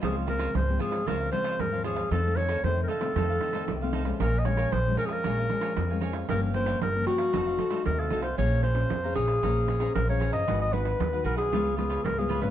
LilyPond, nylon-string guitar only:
\new Staff \with { instrumentName = "Nylon-string guitar" } { \time 4/4 \key f \minor \tempo 4 = 115 << { <f aes c'>8 <f aes c'>8. <f aes c'>8. <f aes c'>8 <f aes c'>8. <f aes c'>8. | <ees a c'>16 <ees a c'>8. <ees a c'>8 r16 <ees a c'>16 <ees a c'>8. <ees a c'>8 <ees a c'>8 <f aes des'>16~ | <f aes des'>16 r16 <f aes des'>8 r16 <f aes des'>8. <f aes des'>8 <f aes des'>8 r16 <f aes des'>8. | <f bes des'>8 <f bes des'>8 r16 <f bes des'>8. <a ees' ges'>8 r16 <a ees' ges'>8. <a ees' ges'>16 r16 |
\key bes \minor <des' aes' c''>8 r16 <des' aes' c''>8 <des' aes' c''>8. <des' aes' c''>8. <des' aes' c''>8 <des' aes' c''>8. | <ees' ges' ces''>8 <ees' ges' ces''>8 r16 <ees' ges' ces''>8. <aes ces' f'>16 r16 <aes ces' f'>8. <aes ces' f'>8 <bes des' f'>16 | } \\ { des4 aes,4 des4 aes,4 | f,4 c4 f,4 c4 | bes,4 f,4 bes,4 f,4 | g,4 g,4 f4 c4 |
bes4 f4 bes4 f4 | aes4 ees4 des4 aes,4 | } >> }